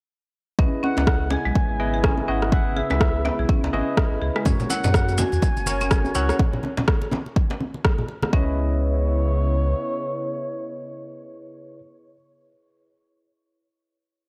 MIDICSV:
0, 0, Header, 1, 8, 480
1, 0, Start_track
1, 0, Tempo, 483871
1, 583, Time_signature, 4, 2, 24, 8
1, 14171, End_track
2, 0, Start_track
2, 0, Title_t, "Analog synth lead"
2, 0, Program_c, 0, 81
2, 829, Note_on_c, 0, 78, 105
2, 1273, Note_off_c, 0, 78, 0
2, 1307, Note_on_c, 0, 80, 123
2, 2265, Note_on_c, 0, 78, 101
2, 2280, Note_off_c, 0, 80, 0
2, 2496, Note_off_c, 0, 78, 0
2, 2502, Note_on_c, 0, 78, 98
2, 2739, Note_on_c, 0, 76, 90
2, 2754, Note_off_c, 0, 78, 0
2, 3461, Note_off_c, 0, 76, 0
2, 4660, Note_on_c, 0, 78, 108
2, 5139, Note_on_c, 0, 80, 125
2, 5154, Note_off_c, 0, 78, 0
2, 6102, Note_on_c, 0, 78, 94
2, 6117, Note_off_c, 0, 80, 0
2, 6343, Note_off_c, 0, 78, 0
2, 8264, Note_on_c, 0, 73, 107
2, 11691, Note_off_c, 0, 73, 0
2, 14171, End_track
3, 0, Start_track
3, 0, Title_t, "Tine electric piano"
3, 0, Program_c, 1, 4
3, 582, Note_on_c, 1, 68, 74
3, 582, Note_on_c, 1, 71, 74
3, 583, Note_on_c, 1, 64, 75
3, 583, Note_on_c, 1, 75, 85
3, 1759, Note_off_c, 1, 64, 0
3, 1759, Note_off_c, 1, 68, 0
3, 1759, Note_off_c, 1, 71, 0
3, 1759, Note_off_c, 1, 75, 0
3, 1782, Note_on_c, 1, 68, 85
3, 1782, Note_on_c, 1, 71, 88
3, 1783, Note_on_c, 1, 64, 99
3, 1783, Note_on_c, 1, 75, 104
3, 2239, Note_off_c, 1, 64, 0
3, 2239, Note_off_c, 1, 68, 0
3, 2239, Note_off_c, 1, 71, 0
3, 2239, Note_off_c, 1, 75, 0
3, 2261, Note_on_c, 1, 64, 92
3, 2261, Note_on_c, 1, 68, 86
3, 2261, Note_on_c, 1, 71, 83
3, 2262, Note_on_c, 1, 75, 97
3, 2478, Note_off_c, 1, 68, 0
3, 2478, Note_off_c, 1, 71, 0
3, 2479, Note_off_c, 1, 64, 0
3, 2479, Note_off_c, 1, 75, 0
3, 2500, Note_on_c, 1, 71, 87
3, 2500, Note_on_c, 1, 76, 102
3, 2501, Note_on_c, 1, 64, 91
3, 2501, Note_on_c, 1, 68, 87
3, 3678, Note_off_c, 1, 64, 0
3, 3678, Note_off_c, 1, 68, 0
3, 3678, Note_off_c, 1, 71, 0
3, 3678, Note_off_c, 1, 76, 0
3, 3700, Note_on_c, 1, 64, 94
3, 3700, Note_on_c, 1, 71, 87
3, 3700, Note_on_c, 1, 75, 110
3, 3701, Note_on_c, 1, 68, 86
3, 4398, Note_off_c, 1, 64, 0
3, 4398, Note_off_c, 1, 68, 0
3, 4398, Note_off_c, 1, 71, 0
3, 4398, Note_off_c, 1, 75, 0
3, 4421, Note_on_c, 1, 61, 83
3, 4421, Note_on_c, 1, 66, 74
3, 4421, Note_on_c, 1, 70, 75
3, 4421, Note_on_c, 1, 73, 88
3, 5598, Note_off_c, 1, 61, 0
3, 5598, Note_off_c, 1, 66, 0
3, 5598, Note_off_c, 1, 70, 0
3, 5598, Note_off_c, 1, 73, 0
3, 5620, Note_on_c, 1, 66, 88
3, 5621, Note_on_c, 1, 61, 97
3, 5621, Note_on_c, 1, 70, 91
3, 5621, Note_on_c, 1, 73, 103
3, 6078, Note_off_c, 1, 61, 0
3, 6078, Note_off_c, 1, 66, 0
3, 6078, Note_off_c, 1, 70, 0
3, 6078, Note_off_c, 1, 73, 0
3, 6100, Note_on_c, 1, 61, 93
3, 6101, Note_on_c, 1, 66, 86
3, 6101, Note_on_c, 1, 70, 86
3, 6101, Note_on_c, 1, 73, 108
3, 6318, Note_off_c, 1, 61, 0
3, 6318, Note_off_c, 1, 66, 0
3, 6318, Note_off_c, 1, 70, 0
3, 6318, Note_off_c, 1, 73, 0
3, 8261, Note_on_c, 1, 68, 82
3, 8262, Note_on_c, 1, 64, 85
3, 8262, Note_on_c, 1, 71, 85
3, 8262, Note_on_c, 1, 75, 101
3, 11688, Note_off_c, 1, 68, 0
3, 11689, Note_off_c, 1, 64, 0
3, 11689, Note_off_c, 1, 71, 0
3, 11689, Note_off_c, 1, 75, 0
3, 14171, End_track
4, 0, Start_track
4, 0, Title_t, "Marimba"
4, 0, Program_c, 2, 12
4, 583, Note_on_c, 2, 61, 86
4, 659, Note_off_c, 2, 61, 0
4, 824, Note_on_c, 2, 61, 80
4, 957, Note_off_c, 2, 61, 0
4, 1303, Note_on_c, 2, 68, 82
4, 1379, Note_off_c, 2, 68, 0
4, 1442, Note_on_c, 2, 56, 101
4, 1497, Note_off_c, 2, 56, 0
4, 1783, Note_on_c, 2, 59, 76
4, 1859, Note_off_c, 2, 59, 0
4, 1922, Note_on_c, 2, 68, 80
4, 2012, Note_off_c, 2, 68, 0
4, 2023, Note_on_c, 2, 61, 89
4, 2099, Note_off_c, 2, 61, 0
4, 2262, Note_on_c, 2, 61, 76
4, 2396, Note_off_c, 2, 61, 0
4, 2743, Note_on_c, 2, 68, 79
4, 2819, Note_off_c, 2, 68, 0
4, 2883, Note_on_c, 2, 56, 106
4, 2937, Note_off_c, 2, 56, 0
4, 3223, Note_on_c, 2, 59, 84
4, 3299, Note_off_c, 2, 59, 0
4, 3364, Note_on_c, 2, 68, 76
4, 3454, Note_off_c, 2, 68, 0
4, 3464, Note_on_c, 2, 61, 83
4, 3540, Note_off_c, 2, 61, 0
4, 3704, Note_on_c, 2, 61, 74
4, 3837, Note_off_c, 2, 61, 0
4, 4182, Note_on_c, 2, 68, 78
4, 4259, Note_off_c, 2, 68, 0
4, 4324, Note_on_c, 2, 56, 100
4, 4377, Note_off_c, 2, 56, 0
4, 4664, Note_on_c, 2, 64, 82
4, 4739, Note_off_c, 2, 64, 0
4, 4805, Note_on_c, 2, 73, 79
4, 4894, Note_off_c, 2, 73, 0
4, 4904, Note_on_c, 2, 66, 86
4, 4979, Note_off_c, 2, 66, 0
4, 5144, Note_on_c, 2, 66, 85
4, 5277, Note_off_c, 2, 66, 0
4, 5625, Note_on_c, 2, 73, 77
4, 5700, Note_off_c, 2, 73, 0
4, 5766, Note_on_c, 2, 61, 109
4, 5819, Note_off_c, 2, 61, 0
4, 6106, Note_on_c, 2, 64, 78
4, 6180, Note_off_c, 2, 64, 0
4, 6246, Note_on_c, 2, 73, 78
4, 6334, Note_off_c, 2, 73, 0
4, 8265, Note_on_c, 2, 61, 99
4, 8487, Note_off_c, 2, 61, 0
4, 14171, End_track
5, 0, Start_track
5, 0, Title_t, "Analog synth pad"
5, 0, Program_c, 3, 89
5, 579, Note_on_c, 3, 59, 79
5, 579, Note_on_c, 3, 64, 98
5, 580, Note_on_c, 3, 49, 85
5, 4383, Note_off_c, 3, 59, 0
5, 4383, Note_off_c, 3, 64, 0
5, 4421, Note_on_c, 3, 58, 73
5, 4422, Note_on_c, 3, 66, 92
5, 6302, Note_off_c, 3, 49, 0
5, 6323, Note_off_c, 3, 58, 0
5, 6323, Note_off_c, 3, 66, 0
5, 8266, Note_on_c, 3, 49, 87
5, 8266, Note_on_c, 3, 59, 77
5, 8266, Note_on_c, 3, 64, 93
5, 11693, Note_off_c, 3, 49, 0
5, 11693, Note_off_c, 3, 59, 0
5, 11693, Note_off_c, 3, 64, 0
5, 14171, End_track
6, 0, Start_track
6, 0, Title_t, "Sub bass"
6, 0, Program_c, 4, 38
6, 581, Note_on_c, 4, 37, 96
6, 668, Note_off_c, 4, 37, 0
6, 964, Note_on_c, 4, 37, 103
6, 1356, Note_off_c, 4, 37, 0
6, 1442, Note_on_c, 4, 35, 101
6, 1503, Note_off_c, 4, 35, 0
6, 1684, Note_on_c, 4, 32, 90
6, 2201, Note_off_c, 4, 32, 0
6, 2265, Note_on_c, 4, 32, 104
6, 2796, Note_off_c, 4, 32, 0
6, 2883, Note_on_c, 4, 37, 104
6, 3275, Note_off_c, 4, 37, 0
6, 3362, Note_on_c, 4, 35, 97
6, 3423, Note_off_c, 4, 35, 0
6, 3604, Note_on_c, 4, 37, 94
6, 3664, Note_off_c, 4, 37, 0
6, 3702, Note_on_c, 4, 32, 97
6, 3788, Note_off_c, 4, 32, 0
6, 4083, Note_on_c, 4, 32, 96
6, 4144, Note_off_c, 4, 32, 0
6, 4182, Note_on_c, 4, 37, 91
6, 4268, Note_off_c, 4, 37, 0
6, 4421, Note_on_c, 4, 42, 97
6, 4508, Note_off_c, 4, 42, 0
6, 4800, Note_on_c, 4, 42, 101
6, 5194, Note_off_c, 4, 42, 0
6, 5281, Note_on_c, 4, 40, 100
6, 5343, Note_off_c, 4, 40, 0
6, 5522, Note_on_c, 4, 30, 88
6, 6040, Note_off_c, 4, 30, 0
6, 6103, Note_on_c, 4, 37, 99
6, 6265, Note_off_c, 4, 37, 0
6, 8264, Note_on_c, 4, 37, 96
6, 9664, Note_off_c, 4, 37, 0
6, 14171, End_track
7, 0, Start_track
7, 0, Title_t, "Djembe"
7, 583, Note_on_c, 9, 63, 73
7, 682, Note_off_c, 9, 63, 0
7, 831, Note_on_c, 9, 63, 78
7, 930, Note_off_c, 9, 63, 0
7, 960, Note_on_c, 9, 63, 80
7, 969, Note_on_c, 9, 62, 85
7, 1059, Note_off_c, 9, 63, 0
7, 1068, Note_off_c, 9, 62, 0
7, 1294, Note_on_c, 9, 62, 80
7, 1296, Note_on_c, 9, 63, 76
7, 1301, Note_on_c, 9, 64, 90
7, 1393, Note_off_c, 9, 62, 0
7, 1395, Note_off_c, 9, 63, 0
7, 1400, Note_off_c, 9, 64, 0
7, 2158, Note_on_c, 9, 64, 89
7, 2257, Note_off_c, 9, 64, 0
7, 2502, Note_on_c, 9, 63, 78
7, 2602, Note_off_c, 9, 63, 0
7, 2742, Note_on_c, 9, 63, 73
7, 2841, Note_off_c, 9, 63, 0
7, 2878, Note_on_c, 9, 63, 85
7, 2883, Note_on_c, 9, 62, 82
7, 2977, Note_off_c, 9, 63, 0
7, 2982, Note_off_c, 9, 62, 0
7, 3223, Note_on_c, 9, 64, 98
7, 3225, Note_on_c, 9, 62, 89
7, 3232, Note_on_c, 9, 63, 80
7, 3323, Note_off_c, 9, 64, 0
7, 3324, Note_off_c, 9, 62, 0
7, 3332, Note_off_c, 9, 63, 0
7, 3610, Note_on_c, 9, 62, 84
7, 3710, Note_off_c, 9, 62, 0
7, 3711, Note_on_c, 9, 64, 83
7, 3810, Note_off_c, 9, 64, 0
7, 4418, Note_on_c, 9, 63, 91
7, 4518, Note_off_c, 9, 63, 0
7, 4660, Note_on_c, 9, 63, 90
7, 4759, Note_off_c, 9, 63, 0
7, 4802, Note_on_c, 9, 63, 84
7, 4804, Note_on_c, 9, 62, 83
7, 4901, Note_off_c, 9, 63, 0
7, 4903, Note_off_c, 9, 62, 0
7, 5138, Note_on_c, 9, 62, 85
7, 5143, Note_on_c, 9, 64, 89
7, 5147, Note_on_c, 9, 63, 88
7, 5237, Note_off_c, 9, 62, 0
7, 5243, Note_off_c, 9, 64, 0
7, 5246, Note_off_c, 9, 63, 0
7, 5998, Note_on_c, 9, 64, 81
7, 6097, Note_off_c, 9, 64, 0
7, 6349, Note_on_c, 9, 63, 85
7, 6448, Note_off_c, 9, 63, 0
7, 6582, Note_on_c, 9, 63, 89
7, 6681, Note_off_c, 9, 63, 0
7, 6719, Note_on_c, 9, 62, 86
7, 6729, Note_on_c, 9, 63, 85
7, 6818, Note_off_c, 9, 62, 0
7, 6828, Note_off_c, 9, 63, 0
7, 7058, Note_on_c, 9, 64, 96
7, 7061, Note_on_c, 9, 63, 87
7, 7071, Note_on_c, 9, 62, 85
7, 7157, Note_off_c, 9, 64, 0
7, 7160, Note_off_c, 9, 63, 0
7, 7170, Note_off_c, 9, 62, 0
7, 7447, Note_on_c, 9, 62, 84
7, 7544, Note_on_c, 9, 64, 79
7, 7546, Note_off_c, 9, 62, 0
7, 7643, Note_off_c, 9, 64, 0
7, 14171, End_track
8, 0, Start_track
8, 0, Title_t, "Drums"
8, 582, Note_on_c, 9, 36, 119
8, 681, Note_off_c, 9, 36, 0
8, 1062, Note_on_c, 9, 36, 122
8, 1063, Note_on_c, 9, 37, 107
8, 1161, Note_off_c, 9, 36, 0
8, 1162, Note_off_c, 9, 37, 0
8, 1542, Note_on_c, 9, 36, 114
8, 1641, Note_off_c, 9, 36, 0
8, 2021, Note_on_c, 9, 36, 125
8, 2021, Note_on_c, 9, 37, 108
8, 2121, Note_off_c, 9, 36, 0
8, 2121, Note_off_c, 9, 37, 0
8, 2404, Note_on_c, 9, 37, 67
8, 2502, Note_on_c, 9, 36, 127
8, 2503, Note_off_c, 9, 37, 0
8, 2601, Note_off_c, 9, 36, 0
8, 2982, Note_on_c, 9, 36, 127
8, 2983, Note_on_c, 9, 37, 117
8, 3081, Note_off_c, 9, 36, 0
8, 3082, Note_off_c, 9, 37, 0
8, 3462, Note_on_c, 9, 36, 121
8, 3561, Note_off_c, 9, 36, 0
8, 3941, Note_on_c, 9, 36, 127
8, 3942, Note_on_c, 9, 37, 110
8, 4041, Note_off_c, 9, 36, 0
8, 4041, Note_off_c, 9, 37, 0
8, 4323, Note_on_c, 9, 37, 68
8, 4417, Note_on_c, 9, 62, 48
8, 4421, Note_on_c, 9, 36, 122
8, 4422, Note_on_c, 9, 70, 53
8, 4423, Note_off_c, 9, 37, 0
8, 4426, Note_on_c, 9, 64, 86
8, 4516, Note_off_c, 9, 62, 0
8, 4521, Note_off_c, 9, 36, 0
8, 4521, Note_off_c, 9, 70, 0
8, 4526, Note_off_c, 9, 64, 0
8, 4562, Note_on_c, 9, 64, 111
8, 4562, Note_on_c, 9, 70, 31
8, 4657, Note_on_c, 9, 62, 37
8, 4661, Note_off_c, 9, 64, 0
8, 4661, Note_off_c, 9, 70, 0
8, 4661, Note_on_c, 9, 63, 66
8, 4663, Note_on_c, 9, 70, 100
8, 4756, Note_off_c, 9, 62, 0
8, 4760, Note_off_c, 9, 63, 0
8, 4762, Note_off_c, 9, 70, 0
8, 4800, Note_on_c, 9, 70, 45
8, 4804, Note_on_c, 9, 63, 77
8, 4806, Note_on_c, 9, 64, 117
8, 4899, Note_off_c, 9, 70, 0
8, 4901, Note_on_c, 9, 37, 117
8, 4902, Note_on_c, 9, 36, 127
8, 4904, Note_off_c, 9, 63, 0
8, 4905, Note_off_c, 9, 64, 0
8, 4910, Note_on_c, 9, 70, 50
8, 5000, Note_off_c, 9, 37, 0
8, 5001, Note_off_c, 9, 36, 0
8, 5009, Note_off_c, 9, 70, 0
8, 5044, Note_on_c, 9, 70, 27
8, 5045, Note_on_c, 9, 62, 51
8, 5136, Note_off_c, 9, 70, 0
8, 5136, Note_on_c, 9, 70, 97
8, 5144, Note_off_c, 9, 62, 0
8, 5150, Note_on_c, 9, 63, 113
8, 5235, Note_off_c, 9, 70, 0
8, 5249, Note_off_c, 9, 63, 0
8, 5279, Note_on_c, 9, 62, 40
8, 5284, Note_on_c, 9, 70, 39
8, 5378, Note_off_c, 9, 62, 0
8, 5378, Note_on_c, 9, 63, 109
8, 5381, Note_on_c, 9, 36, 122
8, 5383, Note_off_c, 9, 70, 0
8, 5385, Note_on_c, 9, 70, 62
8, 5477, Note_off_c, 9, 63, 0
8, 5480, Note_off_c, 9, 36, 0
8, 5485, Note_off_c, 9, 70, 0
8, 5523, Note_on_c, 9, 62, 51
8, 5524, Note_on_c, 9, 70, 28
8, 5616, Note_on_c, 9, 63, 63
8, 5621, Note_off_c, 9, 70, 0
8, 5621, Note_on_c, 9, 70, 100
8, 5623, Note_off_c, 9, 62, 0
8, 5715, Note_off_c, 9, 63, 0
8, 5720, Note_off_c, 9, 70, 0
8, 5761, Note_on_c, 9, 70, 41
8, 5763, Note_on_c, 9, 62, 41
8, 5860, Note_off_c, 9, 70, 0
8, 5861, Note_on_c, 9, 37, 115
8, 5862, Note_off_c, 9, 62, 0
8, 5862, Note_on_c, 9, 36, 127
8, 5862, Note_on_c, 9, 70, 52
8, 5960, Note_off_c, 9, 37, 0
8, 5961, Note_off_c, 9, 36, 0
8, 5961, Note_off_c, 9, 70, 0
8, 6005, Note_on_c, 9, 70, 31
8, 6098, Note_off_c, 9, 70, 0
8, 6098, Note_on_c, 9, 70, 92
8, 6101, Note_on_c, 9, 62, 52
8, 6197, Note_off_c, 9, 70, 0
8, 6201, Note_off_c, 9, 62, 0
8, 6241, Note_on_c, 9, 37, 71
8, 6245, Note_on_c, 9, 70, 44
8, 6340, Note_off_c, 9, 37, 0
8, 6343, Note_on_c, 9, 36, 127
8, 6344, Note_off_c, 9, 70, 0
8, 6344, Note_on_c, 9, 64, 86
8, 6345, Note_on_c, 9, 62, 51
8, 6442, Note_off_c, 9, 36, 0
8, 6443, Note_off_c, 9, 64, 0
8, 6444, Note_off_c, 9, 62, 0
8, 6481, Note_on_c, 9, 64, 96
8, 6577, Note_on_c, 9, 63, 74
8, 6581, Note_off_c, 9, 64, 0
8, 6594, Note_on_c, 9, 62, 36
8, 6677, Note_off_c, 9, 63, 0
8, 6693, Note_off_c, 9, 62, 0
8, 6725, Note_on_c, 9, 64, 93
8, 6729, Note_on_c, 9, 63, 74
8, 6822, Note_on_c, 9, 37, 112
8, 6823, Note_on_c, 9, 36, 127
8, 6825, Note_off_c, 9, 64, 0
8, 6828, Note_off_c, 9, 63, 0
8, 6921, Note_off_c, 9, 37, 0
8, 6922, Note_off_c, 9, 36, 0
8, 6960, Note_on_c, 9, 62, 49
8, 7059, Note_off_c, 9, 62, 0
8, 7065, Note_on_c, 9, 63, 106
8, 7164, Note_off_c, 9, 63, 0
8, 7204, Note_on_c, 9, 62, 35
8, 7303, Note_off_c, 9, 62, 0
8, 7303, Note_on_c, 9, 36, 127
8, 7403, Note_off_c, 9, 36, 0
8, 7441, Note_on_c, 9, 62, 48
8, 7540, Note_off_c, 9, 62, 0
8, 7545, Note_on_c, 9, 63, 65
8, 7644, Note_off_c, 9, 63, 0
8, 7681, Note_on_c, 9, 62, 41
8, 7781, Note_off_c, 9, 62, 0
8, 7783, Note_on_c, 9, 37, 114
8, 7784, Note_on_c, 9, 36, 125
8, 7882, Note_off_c, 9, 37, 0
8, 7883, Note_off_c, 9, 36, 0
8, 7920, Note_on_c, 9, 64, 89
8, 8020, Note_off_c, 9, 64, 0
8, 8020, Note_on_c, 9, 62, 46
8, 8119, Note_off_c, 9, 62, 0
8, 8159, Note_on_c, 9, 63, 122
8, 8164, Note_on_c, 9, 37, 68
8, 8258, Note_off_c, 9, 63, 0
8, 8263, Note_on_c, 9, 36, 111
8, 8264, Note_off_c, 9, 37, 0
8, 8363, Note_off_c, 9, 36, 0
8, 14171, End_track
0, 0, End_of_file